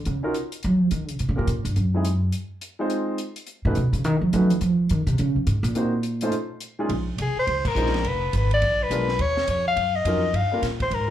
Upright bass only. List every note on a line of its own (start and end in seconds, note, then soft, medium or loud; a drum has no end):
0.06 0.17 C#3 medium
0.64 0.80 F#3 medium
0.80 0.90 F3 medium
0.91 1.08 D#3 medium
1.08 1.19 C#3 medium
1.20 1.28 C3 medium
1.29 1.38 C#3 medium
1.39 1.46 C3 medium
1.47 1.64 A#2 medium
1.65 1.75 G2 medium
1.76 2.29 F#2 medium
3.65 3.76 A#2 medium
3.77 3.92 B2 medium
3.93 4.05 C#3 medium
4.05 4.21 D#3 medium
4.21 4.32 F3 medium
4.33 4.50 F#3 loud
4.50 4.61 E3 loud
4.61 4.88 F3 medium
4.91 5.06 D#3 medium
5.07 5.18 C3 medium
5.19 5.35 C#3 loud
5.36 5.46 F2 medium
5.47 5.62 G#2 medium
5.63 6.28 A#2 loud
6.89 7.17 A#1 medium
7.18 7.34 C2 medium
7.35 muted upright bass stroke soft
7.47 7.74 C#2 medium
7.75 8.03 A#1 medium
8.04 8.32 F1 medium
8.33 8.61 G#1 medium
8.62 8.89 A#1 medium
8.90 9.18 B1 medium
9.19 9.47 D#2 medium
9.48 9.75 F2 medium
9.76 10.04 F#2 medium
10.05 10.32 F2 medium
10.33 10.61 G2 medium
10.63 10.90 A#2 medium
10.91 11.10 G#2 medium